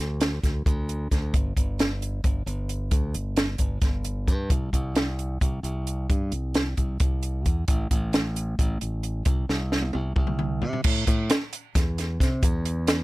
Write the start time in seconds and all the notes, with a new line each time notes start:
0.00 D2
0.21 snare, closed hi-hat
0.43 D2, kick, snare, closed hi-hat
0.66 D2, kick, closed hi-hat
0.89 closed hi-hat
1.11 D2, kick, snare, closed hi-hat
1.34 G1, kick, closed hi-hat
1.57 G1, kick, closed hi-hat
1.79 snare, closed hi-hat
2.02 closed hi-hat
2.24 G1, kick, closed hi-hat
2.46 G1, closed hi-hat
2.69 closed hi-hat
2.91 D2, kick, closed hi-hat
3.14 G1, closed hi-hat
3.37 snare, closed hi-hat
3.58 G1, kick, closed hi-hat
3.82 G1, kick, snare, closed hi-hat
4.05 closed hi-hat
4.28 G2, kick, closed hi-hat
4.50 C2, kick, closed hi-hat
4.73 C2, kick, closed hi-hat
4.95 snare, closed hi-hat
5.19 closed hi-hat
5.41 C2, kick, closed hi-hat
5.63 C2, closed hi-hat
5.87 closed hi-hat
6.10 G2, kick, closed hi-hat
6.32 C2, closed hi-hat
6.54 snare, closed hi-hat
6.77 C2, kick, closed hi-hat
7.00 C2, kick, closed hi-hat
7.23 closed hi-hat
7.46 E2, kick, closed hi-hat
7.68 A1, kick, closed hi-hat
7.91 A1, kick, closed hi-hat
8.13 snare, closed hi-hat
8.36 closed hi-hat
8.59 A1, kick, closed hi-hat
8.81 A1, closed hi-hat
9.03 closed hi-hat
9.25 C2, kick, closed hi-hat
9.49 C2, snare
9.72 snare
9.82 high tom
9.93 C2, high tom
10.16 C2, kick, mid tom
10.27 mid tom
10.39 mid tom
10.62 C3, floor tom
10.73 floor tom
10.84 A2, kick, crash
11.07 A2, kick, closed hi-hat
11.30 snare, closed hi-hat
11.53 closed hi-hat
11.75 E2, kick, snare, closed hi-hat
11.98 snare, closed hi-hat
12.20 C3, kick, snare, closed hi-hat
12.43 E2, kick, closed hi-hat
12.65 closed hi-hat
12.87 snare, closed hi-hat